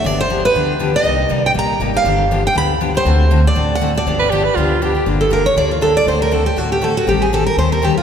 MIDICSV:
0, 0, Header, 1, 5, 480
1, 0, Start_track
1, 0, Tempo, 251151
1, 84, Time_signature, 4, 2, 24, 8
1, 15345, End_track
2, 0, Start_track
2, 0, Title_t, "Steel-string acoustic guitar"
2, 0, Program_c, 0, 25
2, 118, Note_on_c, 0, 74, 89
2, 365, Note_off_c, 0, 74, 0
2, 392, Note_on_c, 0, 72, 86
2, 855, Note_off_c, 0, 72, 0
2, 863, Note_on_c, 0, 71, 85
2, 1832, Note_on_c, 0, 75, 92
2, 1833, Note_off_c, 0, 71, 0
2, 2539, Note_off_c, 0, 75, 0
2, 2539, Note_on_c, 0, 74, 92
2, 2786, Note_off_c, 0, 74, 0
2, 2794, Note_on_c, 0, 79, 91
2, 2880, Note_off_c, 0, 79, 0
2, 3032, Note_on_c, 0, 82, 96
2, 3446, Note_off_c, 0, 82, 0
2, 3756, Note_on_c, 0, 77, 92
2, 4625, Note_off_c, 0, 77, 0
2, 4716, Note_on_c, 0, 79, 94
2, 4913, Note_off_c, 0, 79, 0
2, 4924, Note_on_c, 0, 83, 102
2, 5350, Note_off_c, 0, 83, 0
2, 5675, Note_on_c, 0, 72, 95
2, 6632, Note_off_c, 0, 72, 0
2, 6639, Note_on_c, 0, 74, 93
2, 7163, Note_off_c, 0, 74, 0
2, 7174, Note_on_c, 0, 78, 88
2, 7446, Note_off_c, 0, 78, 0
2, 7597, Note_on_c, 0, 74, 87
2, 9149, Note_off_c, 0, 74, 0
2, 9952, Note_on_c, 0, 69, 77
2, 10157, Note_off_c, 0, 69, 0
2, 10183, Note_on_c, 0, 70, 76
2, 10427, Note_off_c, 0, 70, 0
2, 10434, Note_on_c, 0, 73, 86
2, 10639, Note_off_c, 0, 73, 0
2, 10655, Note_on_c, 0, 74, 91
2, 10903, Note_off_c, 0, 74, 0
2, 10919, Note_on_c, 0, 65, 45
2, 11122, Note_off_c, 0, 65, 0
2, 11129, Note_on_c, 0, 69, 76
2, 11380, Note_off_c, 0, 69, 0
2, 11406, Note_on_c, 0, 74, 98
2, 11606, Note_off_c, 0, 74, 0
2, 11623, Note_on_c, 0, 72, 71
2, 11868, Note_off_c, 0, 72, 0
2, 11887, Note_on_c, 0, 70, 80
2, 12104, Note_off_c, 0, 70, 0
2, 12104, Note_on_c, 0, 69, 74
2, 12349, Note_off_c, 0, 69, 0
2, 12350, Note_on_c, 0, 67, 81
2, 12573, Note_off_c, 0, 67, 0
2, 12573, Note_on_c, 0, 66, 72
2, 12824, Note_off_c, 0, 66, 0
2, 12843, Note_on_c, 0, 67, 76
2, 13045, Note_off_c, 0, 67, 0
2, 13071, Note_on_c, 0, 69, 79
2, 13313, Note_off_c, 0, 69, 0
2, 13325, Note_on_c, 0, 66, 84
2, 13527, Note_off_c, 0, 66, 0
2, 13542, Note_on_c, 0, 67, 72
2, 13789, Note_off_c, 0, 67, 0
2, 13795, Note_on_c, 0, 68, 69
2, 14001, Note_off_c, 0, 68, 0
2, 14026, Note_on_c, 0, 69, 77
2, 14259, Note_off_c, 0, 69, 0
2, 14267, Note_on_c, 0, 70, 80
2, 14478, Note_off_c, 0, 70, 0
2, 14497, Note_on_c, 0, 72, 82
2, 14747, Note_off_c, 0, 72, 0
2, 14759, Note_on_c, 0, 70, 77
2, 14965, Note_off_c, 0, 70, 0
2, 14991, Note_on_c, 0, 67, 71
2, 15234, Note_off_c, 0, 67, 0
2, 15242, Note_on_c, 0, 65, 74
2, 15345, Note_off_c, 0, 65, 0
2, 15345, End_track
3, 0, Start_track
3, 0, Title_t, "Soprano saxophone"
3, 0, Program_c, 1, 64
3, 8017, Note_on_c, 1, 71, 94
3, 8222, Note_on_c, 1, 67, 86
3, 8251, Note_off_c, 1, 71, 0
3, 8484, Note_on_c, 1, 71, 94
3, 8513, Note_off_c, 1, 67, 0
3, 8707, Note_on_c, 1, 65, 84
3, 8736, Note_off_c, 1, 71, 0
3, 9205, Note_on_c, 1, 67, 74
3, 9234, Note_off_c, 1, 65, 0
3, 9682, Note_off_c, 1, 67, 0
3, 15345, End_track
4, 0, Start_track
4, 0, Title_t, "Steel-string acoustic guitar"
4, 0, Program_c, 2, 25
4, 79, Note_on_c, 2, 50, 66
4, 85, Note_on_c, 2, 53, 72
4, 89, Note_on_c, 2, 62, 75
4, 92, Note_on_c, 2, 59, 73
4, 93, Note_on_c, 2, 67, 71
4, 421, Note_off_c, 2, 50, 0
4, 425, Note_off_c, 2, 53, 0
4, 427, Note_off_c, 2, 62, 0
4, 428, Note_off_c, 2, 59, 0
4, 428, Note_off_c, 2, 67, 0
4, 568, Note_on_c, 2, 50, 70
4, 572, Note_on_c, 2, 53, 80
4, 576, Note_on_c, 2, 62, 83
4, 580, Note_on_c, 2, 59, 83
4, 582, Note_on_c, 2, 67, 87
4, 755, Note_off_c, 2, 50, 0
4, 756, Note_off_c, 2, 53, 0
4, 759, Note_off_c, 2, 62, 0
4, 761, Note_off_c, 2, 59, 0
4, 762, Note_off_c, 2, 67, 0
4, 1049, Note_on_c, 2, 50, 62
4, 1057, Note_on_c, 2, 53, 64
4, 1062, Note_on_c, 2, 62, 66
4, 1067, Note_on_c, 2, 59, 62
4, 1069, Note_on_c, 2, 67, 72
4, 1386, Note_off_c, 2, 50, 0
4, 1391, Note_off_c, 2, 53, 0
4, 1393, Note_off_c, 2, 62, 0
4, 1395, Note_off_c, 2, 59, 0
4, 1396, Note_off_c, 2, 67, 0
4, 1521, Note_on_c, 2, 50, 79
4, 1531, Note_on_c, 2, 53, 84
4, 1534, Note_on_c, 2, 59, 82
4, 1537, Note_on_c, 2, 62, 78
4, 1539, Note_on_c, 2, 67, 84
4, 1711, Note_off_c, 2, 50, 0
4, 1716, Note_off_c, 2, 53, 0
4, 1717, Note_off_c, 2, 59, 0
4, 1719, Note_off_c, 2, 62, 0
4, 1720, Note_off_c, 2, 67, 0
4, 1795, Note_on_c, 2, 67, 52
4, 1811, Note_on_c, 2, 62, 43
4, 1826, Note_on_c, 2, 59, 44
4, 1989, Note_off_c, 2, 67, 0
4, 2000, Note_off_c, 2, 59, 0
4, 2002, Note_on_c, 2, 48, 62
4, 2002, Note_on_c, 2, 55, 72
4, 2005, Note_off_c, 2, 62, 0
4, 2008, Note_on_c, 2, 58, 68
4, 2012, Note_on_c, 2, 67, 70
4, 2013, Note_on_c, 2, 63, 75
4, 2342, Note_off_c, 2, 48, 0
4, 2343, Note_off_c, 2, 55, 0
4, 2345, Note_off_c, 2, 58, 0
4, 2348, Note_off_c, 2, 63, 0
4, 2348, Note_off_c, 2, 67, 0
4, 2464, Note_on_c, 2, 48, 72
4, 2474, Note_on_c, 2, 55, 82
4, 2483, Note_on_c, 2, 58, 74
4, 2485, Note_on_c, 2, 63, 81
4, 2490, Note_on_c, 2, 67, 75
4, 2662, Note_off_c, 2, 48, 0
4, 2667, Note_off_c, 2, 55, 0
4, 2672, Note_off_c, 2, 58, 0
4, 2673, Note_off_c, 2, 63, 0
4, 2675, Note_off_c, 2, 67, 0
4, 2948, Note_on_c, 2, 48, 59
4, 2951, Note_on_c, 2, 55, 66
4, 2951, Note_on_c, 2, 58, 67
4, 2959, Note_on_c, 2, 63, 70
4, 2964, Note_on_c, 2, 67, 70
4, 3295, Note_off_c, 2, 48, 0
4, 3297, Note_off_c, 2, 55, 0
4, 3297, Note_off_c, 2, 58, 0
4, 3301, Note_off_c, 2, 63, 0
4, 3303, Note_off_c, 2, 67, 0
4, 3439, Note_on_c, 2, 48, 76
4, 3449, Note_on_c, 2, 55, 79
4, 3452, Note_on_c, 2, 58, 73
4, 3466, Note_on_c, 2, 63, 76
4, 3466, Note_on_c, 2, 67, 83
4, 3629, Note_off_c, 2, 48, 0
4, 3635, Note_off_c, 2, 55, 0
4, 3636, Note_off_c, 2, 58, 0
4, 3643, Note_off_c, 2, 63, 0
4, 3643, Note_off_c, 2, 67, 0
4, 3704, Note_on_c, 2, 67, 59
4, 3722, Note_on_c, 2, 63, 47
4, 3738, Note_on_c, 2, 58, 45
4, 3913, Note_off_c, 2, 67, 0
4, 3916, Note_on_c, 2, 50, 69
4, 3921, Note_off_c, 2, 58, 0
4, 3921, Note_off_c, 2, 63, 0
4, 3925, Note_on_c, 2, 53, 73
4, 3929, Note_on_c, 2, 59, 73
4, 3935, Note_on_c, 2, 62, 75
4, 3936, Note_on_c, 2, 67, 78
4, 4259, Note_off_c, 2, 50, 0
4, 4264, Note_off_c, 2, 53, 0
4, 4265, Note_off_c, 2, 59, 0
4, 4268, Note_off_c, 2, 62, 0
4, 4269, Note_off_c, 2, 67, 0
4, 4415, Note_on_c, 2, 53, 71
4, 4420, Note_on_c, 2, 50, 79
4, 4425, Note_on_c, 2, 59, 82
4, 4430, Note_on_c, 2, 62, 80
4, 4435, Note_on_c, 2, 67, 84
4, 4597, Note_off_c, 2, 53, 0
4, 4599, Note_off_c, 2, 50, 0
4, 4602, Note_off_c, 2, 59, 0
4, 4604, Note_off_c, 2, 62, 0
4, 4607, Note_off_c, 2, 67, 0
4, 4874, Note_on_c, 2, 50, 68
4, 4880, Note_on_c, 2, 59, 65
4, 4882, Note_on_c, 2, 53, 65
4, 4890, Note_on_c, 2, 62, 71
4, 4895, Note_on_c, 2, 67, 72
4, 5217, Note_off_c, 2, 50, 0
4, 5221, Note_off_c, 2, 53, 0
4, 5221, Note_off_c, 2, 59, 0
4, 5226, Note_off_c, 2, 62, 0
4, 5228, Note_off_c, 2, 67, 0
4, 5363, Note_on_c, 2, 50, 82
4, 5368, Note_on_c, 2, 53, 72
4, 5369, Note_on_c, 2, 59, 77
4, 5379, Note_on_c, 2, 67, 83
4, 5382, Note_on_c, 2, 62, 78
4, 5551, Note_off_c, 2, 50, 0
4, 5553, Note_off_c, 2, 53, 0
4, 5554, Note_off_c, 2, 59, 0
4, 5559, Note_off_c, 2, 67, 0
4, 5560, Note_off_c, 2, 62, 0
4, 5628, Note_on_c, 2, 67, 58
4, 5646, Note_on_c, 2, 62, 51
4, 5659, Note_on_c, 2, 59, 44
4, 5834, Note_off_c, 2, 67, 0
4, 5836, Note_on_c, 2, 50, 68
4, 5840, Note_off_c, 2, 59, 0
4, 5843, Note_off_c, 2, 62, 0
4, 5847, Note_on_c, 2, 60, 66
4, 5850, Note_on_c, 2, 57, 69
4, 5855, Note_on_c, 2, 66, 74
4, 5857, Note_on_c, 2, 69, 83
4, 6178, Note_off_c, 2, 50, 0
4, 6184, Note_off_c, 2, 60, 0
4, 6185, Note_off_c, 2, 57, 0
4, 6188, Note_off_c, 2, 66, 0
4, 6189, Note_off_c, 2, 69, 0
4, 6320, Note_on_c, 2, 57, 75
4, 6322, Note_on_c, 2, 50, 84
4, 6328, Note_on_c, 2, 60, 80
4, 6336, Note_on_c, 2, 69, 81
4, 6337, Note_on_c, 2, 66, 89
4, 6509, Note_off_c, 2, 57, 0
4, 6510, Note_off_c, 2, 50, 0
4, 6513, Note_off_c, 2, 60, 0
4, 6517, Note_off_c, 2, 66, 0
4, 6517, Note_off_c, 2, 69, 0
4, 6790, Note_on_c, 2, 50, 64
4, 6795, Note_on_c, 2, 57, 68
4, 6797, Note_on_c, 2, 60, 68
4, 6806, Note_on_c, 2, 69, 74
4, 6807, Note_on_c, 2, 66, 70
4, 7135, Note_off_c, 2, 50, 0
4, 7137, Note_off_c, 2, 57, 0
4, 7138, Note_off_c, 2, 60, 0
4, 7143, Note_off_c, 2, 66, 0
4, 7143, Note_off_c, 2, 69, 0
4, 7287, Note_on_c, 2, 50, 73
4, 7289, Note_on_c, 2, 57, 77
4, 7291, Note_on_c, 2, 60, 85
4, 7300, Note_on_c, 2, 66, 82
4, 7306, Note_on_c, 2, 69, 84
4, 7472, Note_off_c, 2, 50, 0
4, 7473, Note_off_c, 2, 57, 0
4, 7474, Note_off_c, 2, 60, 0
4, 7479, Note_off_c, 2, 66, 0
4, 7481, Note_off_c, 2, 69, 0
4, 7544, Note_on_c, 2, 69, 56
4, 7569, Note_on_c, 2, 66, 50
4, 7586, Note_on_c, 2, 60, 48
4, 7751, Note_off_c, 2, 69, 0
4, 7763, Note_off_c, 2, 66, 0
4, 7771, Note_on_c, 2, 50, 66
4, 7772, Note_off_c, 2, 60, 0
4, 7777, Note_on_c, 2, 53, 74
4, 7788, Note_on_c, 2, 59, 77
4, 7788, Note_on_c, 2, 62, 68
4, 7792, Note_on_c, 2, 67, 75
4, 8105, Note_off_c, 2, 50, 0
4, 8108, Note_off_c, 2, 53, 0
4, 8113, Note_off_c, 2, 59, 0
4, 8113, Note_off_c, 2, 62, 0
4, 8115, Note_off_c, 2, 67, 0
4, 8254, Note_on_c, 2, 50, 82
4, 8257, Note_on_c, 2, 53, 82
4, 8262, Note_on_c, 2, 62, 82
4, 8264, Note_on_c, 2, 59, 85
4, 8269, Note_on_c, 2, 67, 84
4, 8435, Note_off_c, 2, 50, 0
4, 8437, Note_off_c, 2, 53, 0
4, 8439, Note_off_c, 2, 62, 0
4, 8440, Note_off_c, 2, 59, 0
4, 8443, Note_off_c, 2, 67, 0
4, 8736, Note_on_c, 2, 50, 65
4, 8743, Note_on_c, 2, 53, 70
4, 8746, Note_on_c, 2, 62, 72
4, 8749, Note_on_c, 2, 59, 66
4, 8752, Note_on_c, 2, 67, 67
4, 9067, Note_off_c, 2, 50, 0
4, 9071, Note_off_c, 2, 53, 0
4, 9073, Note_off_c, 2, 62, 0
4, 9074, Note_off_c, 2, 59, 0
4, 9076, Note_off_c, 2, 67, 0
4, 9209, Note_on_c, 2, 50, 75
4, 9209, Note_on_c, 2, 53, 76
4, 9213, Note_on_c, 2, 59, 79
4, 9217, Note_on_c, 2, 62, 80
4, 9225, Note_on_c, 2, 67, 86
4, 9393, Note_off_c, 2, 50, 0
4, 9393, Note_off_c, 2, 53, 0
4, 9395, Note_off_c, 2, 59, 0
4, 9397, Note_off_c, 2, 62, 0
4, 9401, Note_off_c, 2, 67, 0
4, 9453, Note_on_c, 2, 67, 55
4, 9470, Note_on_c, 2, 62, 50
4, 9488, Note_on_c, 2, 59, 42
4, 9663, Note_off_c, 2, 62, 0
4, 9666, Note_off_c, 2, 67, 0
4, 9669, Note_off_c, 2, 59, 0
4, 9673, Note_on_c, 2, 50, 60
4, 9677, Note_on_c, 2, 58, 65
4, 9678, Note_on_c, 2, 53, 70
4, 9686, Note_on_c, 2, 62, 70
4, 9688, Note_on_c, 2, 67, 69
4, 10016, Note_off_c, 2, 50, 0
4, 10018, Note_off_c, 2, 58, 0
4, 10019, Note_off_c, 2, 53, 0
4, 10023, Note_off_c, 2, 62, 0
4, 10024, Note_off_c, 2, 67, 0
4, 10136, Note_on_c, 2, 50, 77
4, 10147, Note_on_c, 2, 53, 71
4, 10149, Note_on_c, 2, 58, 77
4, 10152, Note_on_c, 2, 67, 81
4, 10153, Note_on_c, 2, 62, 85
4, 10337, Note_off_c, 2, 50, 0
4, 10342, Note_off_c, 2, 53, 0
4, 10343, Note_off_c, 2, 58, 0
4, 10345, Note_off_c, 2, 62, 0
4, 10345, Note_off_c, 2, 67, 0
4, 10634, Note_on_c, 2, 50, 62
4, 10638, Note_on_c, 2, 53, 67
4, 10642, Note_on_c, 2, 62, 63
4, 10647, Note_on_c, 2, 58, 61
4, 10650, Note_on_c, 2, 67, 67
4, 10978, Note_off_c, 2, 50, 0
4, 10979, Note_off_c, 2, 53, 0
4, 10982, Note_off_c, 2, 62, 0
4, 10984, Note_off_c, 2, 58, 0
4, 10986, Note_off_c, 2, 67, 0
4, 11108, Note_on_c, 2, 50, 74
4, 11115, Note_on_c, 2, 53, 85
4, 11120, Note_on_c, 2, 62, 82
4, 11121, Note_on_c, 2, 58, 82
4, 11122, Note_on_c, 2, 67, 79
4, 11303, Note_off_c, 2, 50, 0
4, 11307, Note_off_c, 2, 53, 0
4, 11309, Note_off_c, 2, 62, 0
4, 11310, Note_off_c, 2, 58, 0
4, 11310, Note_off_c, 2, 67, 0
4, 11589, Note_on_c, 2, 50, 66
4, 11602, Note_on_c, 2, 57, 69
4, 11603, Note_on_c, 2, 60, 61
4, 11615, Note_on_c, 2, 66, 75
4, 11618, Note_on_c, 2, 69, 69
4, 11936, Note_off_c, 2, 50, 0
4, 11942, Note_off_c, 2, 57, 0
4, 11942, Note_off_c, 2, 60, 0
4, 11948, Note_off_c, 2, 66, 0
4, 11950, Note_off_c, 2, 69, 0
4, 12066, Note_on_c, 2, 50, 74
4, 12068, Note_on_c, 2, 57, 76
4, 12074, Note_on_c, 2, 60, 73
4, 12082, Note_on_c, 2, 66, 75
4, 12082, Note_on_c, 2, 69, 82
4, 12263, Note_off_c, 2, 50, 0
4, 12264, Note_off_c, 2, 57, 0
4, 12267, Note_off_c, 2, 60, 0
4, 12271, Note_off_c, 2, 66, 0
4, 12271, Note_off_c, 2, 69, 0
4, 12543, Note_on_c, 2, 50, 64
4, 12553, Note_on_c, 2, 57, 62
4, 12559, Note_on_c, 2, 60, 61
4, 12559, Note_on_c, 2, 66, 67
4, 12565, Note_on_c, 2, 69, 71
4, 12893, Note_off_c, 2, 50, 0
4, 12898, Note_off_c, 2, 57, 0
4, 12901, Note_off_c, 2, 60, 0
4, 12901, Note_off_c, 2, 66, 0
4, 12904, Note_off_c, 2, 69, 0
4, 13022, Note_on_c, 2, 50, 75
4, 13026, Note_on_c, 2, 57, 77
4, 13028, Note_on_c, 2, 60, 77
4, 13034, Note_on_c, 2, 66, 87
4, 13041, Note_on_c, 2, 69, 85
4, 13221, Note_off_c, 2, 50, 0
4, 13224, Note_off_c, 2, 57, 0
4, 13224, Note_off_c, 2, 60, 0
4, 13227, Note_off_c, 2, 66, 0
4, 13231, Note_off_c, 2, 69, 0
4, 13510, Note_on_c, 2, 51, 70
4, 13517, Note_on_c, 2, 60, 74
4, 13519, Note_on_c, 2, 55, 71
4, 13523, Note_on_c, 2, 67, 73
4, 13526, Note_on_c, 2, 69, 74
4, 13857, Note_off_c, 2, 51, 0
4, 13861, Note_off_c, 2, 60, 0
4, 13862, Note_off_c, 2, 55, 0
4, 13864, Note_off_c, 2, 67, 0
4, 13866, Note_off_c, 2, 69, 0
4, 13996, Note_on_c, 2, 51, 75
4, 14005, Note_on_c, 2, 55, 81
4, 14008, Note_on_c, 2, 67, 78
4, 14009, Note_on_c, 2, 60, 75
4, 14020, Note_on_c, 2, 69, 82
4, 14190, Note_off_c, 2, 51, 0
4, 14194, Note_off_c, 2, 55, 0
4, 14195, Note_off_c, 2, 67, 0
4, 14196, Note_off_c, 2, 60, 0
4, 14202, Note_off_c, 2, 69, 0
4, 14483, Note_on_c, 2, 51, 68
4, 14496, Note_on_c, 2, 60, 65
4, 14497, Note_on_c, 2, 55, 61
4, 14504, Note_on_c, 2, 67, 75
4, 14510, Note_on_c, 2, 69, 72
4, 14824, Note_off_c, 2, 51, 0
4, 14831, Note_off_c, 2, 60, 0
4, 14832, Note_off_c, 2, 55, 0
4, 14836, Note_off_c, 2, 67, 0
4, 14838, Note_off_c, 2, 69, 0
4, 14942, Note_on_c, 2, 51, 73
4, 14952, Note_on_c, 2, 55, 78
4, 14956, Note_on_c, 2, 67, 81
4, 14958, Note_on_c, 2, 60, 84
4, 14966, Note_on_c, 2, 69, 86
4, 15143, Note_off_c, 2, 51, 0
4, 15148, Note_off_c, 2, 55, 0
4, 15150, Note_off_c, 2, 67, 0
4, 15151, Note_off_c, 2, 60, 0
4, 15155, Note_off_c, 2, 69, 0
4, 15345, End_track
5, 0, Start_track
5, 0, Title_t, "Upright bass"
5, 0, Program_c, 3, 32
5, 88, Note_on_c, 3, 31, 87
5, 854, Note_off_c, 3, 31, 0
5, 1046, Note_on_c, 3, 38, 75
5, 1813, Note_off_c, 3, 38, 0
5, 2001, Note_on_c, 3, 36, 84
5, 2386, Note_off_c, 3, 36, 0
5, 2482, Note_on_c, 3, 36, 80
5, 2890, Note_off_c, 3, 36, 0
5, 2964, Note_on_c, 3, 34, 80
5, 3371, Note_off_c, 3, 34, 0
5, 3436, Note_on_c, 3, 32, 77
5, 3846, Note_off_c, 3, 32, 0
5, 3909, Note_on_c, 3, 31, 88
5, 4681, Note_off_c, 3, 31, 0
5, 4874, Note_on_c, 3, 38, 76
5, 5644, Note_off_c, 3, 38, 0
5, 5834, Note_on_c, 3, 38, 90
5, 6604, Note_off_c, 3, 38, 0
5, 6800, Note_on_c, 3, 33, 79
5, 7567, Note_off_c, 3, 33, 0
5, 7776, Note_on_c, 3, 31, 88
5, 8537, Note_off_c, 3, 31, 0
5, 8717, Note_on_c, 3, 38, 75
5, 9486, Note_off_c, 3, 38, 0
5, 9679, Note_on_c, 3, 31, 80
5, 10447, Note_off_c, 3, 31, 0
5, 10628, Note_on_c, 3, 38, 73
5, 11402, Note_off_c, 3, 38, 0
5, 11588, Note_on_c, 3, 38, 85
5, 12362, Note_off_c, 3, 38, 0
5, 12546, Note_on_c, 3, 33, 75
5, 13322, Note_off_c, 3, 33, 0
5, 13503, Note_on_c, 3, 33, 81
5, 14280, Note_off_c, 3, 33, 0
5, 14465, Note_on_c, 3, 39, 74
5, 15242, Note_off_c, 3, 39, 0
5, 15345, End_track
0, 0, End_of_file